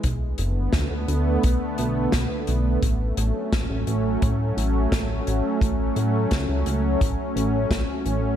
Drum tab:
HH |xxxxxxxx|xxxxxxxx|xxxxxxxx|
SD |--o---o-|--o---o-|--o---o-|
BD |o-o-o-o-|o-o-o-o-|o-o-o-o-|